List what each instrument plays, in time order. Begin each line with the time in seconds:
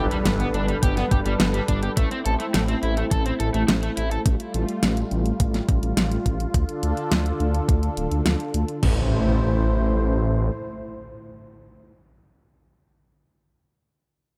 Already playing: analog synth pad G3 D4 A4 B4, impact
0.11 overdriven electric guitar G3, closed hi-hat
0.26 detuned saw bass G1, overdriven electric guitar G3, snare, closed hi-hat
0.40 overdriven electric guitar B3, closed hi-hat
0.54 detuned saw bass G1, overdriven electric guitar D4, closed hi-hat
0.68 overdriven electric guitar G3, closed hi-hat
0.83 detuned saw bass G1, overdriven electric guitar G4, kick, closed hi-hat
0.97 overdriven electric guitar B3, snare, closed hi-hat
1.11 detuned saw bass G1, overdriven electric guitar G4, kick, closed hi-hat
1.26 detuned saw bass G1, overdriven electric guitar G3, closed hi-hat
1.40 detuned saw bass G1, overdriven electric guitar G3, snare, closed hi-hat
1.54 overdriven electric guitar G3, closed hi-hat
1.68 detuned saw bass G1, overdriven electric guitar D4, kick, closed hi-hat
1.83 overdriven electric guitar G4, closed hi-hat
1.97 detuned saw bass A1, overdriven electric guitar A3, analog synth pad A3 C4 E4, kick, closed hi-hat
2.11 overdriven electric guitar C4, closed hi-hat
2.26 detuned saw bass A1, overdriven electric guitar A4, closed hi-hat
2.40 overdriven electric guitar A3, closed hi-hat
2.54 detuned saw bass A1, overdriven electric guitar A3, snare, closed hi-hat
2.68 overdriven electric guitar C4, closed hi-hat
2.83 detuned saw bass A1, overdriven electric guitar E4, closed hi-hat
2.97 overdriven electric guitar A3, closed hi-hat
3.11 detuned saw bass A1, overdriven electric guitar A4, kick, closed hi-hat
3.26 overdriven electric guitar C4, closed hi-hat
3.40 detuned saw bass A1, overdriven electric guitar A4, closed hi-hat
3.54 detuned saw bass A1, overdriven electric guitar A3, closed hi-hat
3.68 detuned saw bass A1, overdriven electric guitar A3, snare, closed hi-hat
3.83 overdriven electric guitar A3, closed hi-hat
3.97 detuned saw bass A1, overdriven electric guitar E4, closed hi-hat
4.11 overdriven electric guitar A4, closed hi-hat
4.26 detuned saw bass A1, analog synth pad G3 F4, kick, closed hi-hat
4.40 closed hi-hat
4.54 detuned saw bass A1, closed hi-hat
4.69 closed hi-hat
4.83 detuned saw bass A1, snare, closed hi-hat
4.97 closed hi-hat
5.11 detuned saw bass A1, closed hi-hat
5.26 closed hi-hat
5.40 detuned saw bass A1, kick, closed hi-hat
5.54 snare, closed hi-hat
5.69 detuned saw bass A1, kick, closed hi-hat
5.83 detuned saw bass A1, closed hi-hat
5.97 detuned saw bass A1, snare, closed hi-hat
6.12 closed hi-hat
6.26 detuned saw bass A1, kick, closed hi-hat
6.40 closed hi-hat
6.54 detuned saw bass D2, analog synth pad D3 D4 A4, kick, closed hi-hat
6.69 closed hi-hat
6.83 detuned saw bass D2, closed hi-hat
6.97 closed hi-hat
7.11 detuned saw bass D2, snare, closed hi-hat
7.26 closed hi-hat
7.40 detuned saw bass D2, closed hi-hat
7.54 closed hi-hat
7.69 detuned saw bass D2, kick, closed hi-hat
7.83 closed hi-hat
7.97 detuned saw bass D1, closed hi-hat
8.11 detuned saw bass D2, closed hi-hat
8.26 detuned saw bass D2, snare, closed hi-hat
8.40 closed hi-hat
8.54 detuned saw bass D2, closed hi-hat
8.68 closed hi-hat
8.83 detuned saw bass A1, analog synth pad A2 A3 E4 C5, kick, crash, impact